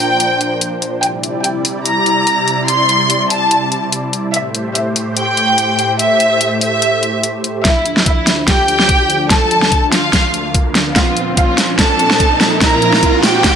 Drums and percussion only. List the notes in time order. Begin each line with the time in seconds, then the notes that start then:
0.20 closed hi-hat
0.41 closed hi-hat
0.61 closed hi-hat
0.82 closed hi-hat
1.03 closed hi-hat
1.23 closed hi-hat
1.44 closed hi-hat
1.65 open hi-hat
1.86 closed hi-hat
2.06 closed hi-hat
2.27 closed hi-hat
2.48 closed hi-hat
2.68 closed hi-hat
2.89 closed hi-hat
3.10 closed hi-hat
3.30 open hi-hat
3.51 closed hi-hat
3.72 closed hi-hat
3.92 closed hi-hat
4.13 closed hi-hat
4.34 closed hi-hat
4.55 closed hi-hat
4.75 closed hi-hat
4.96 open hi-hat
5.17 closed hi-hat
5.37 closed hi-hat
5.58 closed hi-hat
5.79 closed hi-hat
5.99 closed hi-hat
6.20 closed hi-hat
6.41 closed hi-hat
6.61 open hi-hat
6.82 closed hi-hat
7.03 closed hi-hat
7.23 closed hi-hat
7.44 closed hi-hat
7.65 kick, snare, closed hi-hat
7.86 closed hi-hat
7.97 snare
8.06 kick, closed hi-hat
8.27 snare, open hi-hat
8.48 kick, snare, closed hi-hat
8.68 closed hi-hat
8.80 snare
8.89 kick, closed hi-hat
9.10 closed hi-hat
9.30 kick, snare, closed hi-hat
9.51 closed hi-hat
9.62 snare
9.72 kick, closed hi-hat
9.92 snare, open hi-hat
10.13 kick, snare, closed hi-hat
10.34 closed hi-hat
10.54 kick, closed hi-hat
10.75 snare, closed hi-hat
10.96 kick, snare, closed hi-hat
11.17 closed hi-hat
11.37 kick, closed hi-hat
11.58 snare, open hi-hat
11.79 kick, snare, closed hi-hat
11.99 closed hi-hat
12.11 snare
12.20 kick, closed hi-hat
12.41 snare, closed hi-hat
12.61 kick, snare, closed hi-hat
12.82 closed hi-hat
12.93 snare
13.03 kick, closed hi-hat
13.23 snare, open hi-hat
13.44 kick, snare, closed hi-hat